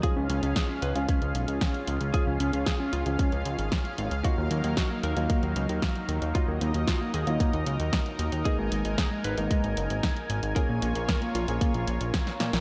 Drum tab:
HH |x-xxx-xxxxxxxxxx|x-xxx-xxxxxxxxxx|x-xxx-xxxxxxxxxx|x-xxx-xxxxxxxxxx|
SD |----o-------o---|----o-------o---|----o-------o---|----o-------o---|
BD |o---o---o---o---|o---o---o---o---|o---o---o---o---|o---o---o---o---|

HH |x-xxx-xxxxxxxxxx|x-xxxxxxxxxxxxxx|
SD |----o-------o---|----o-------oooo|
BD |o---o---o---o---|o---o---o---o---|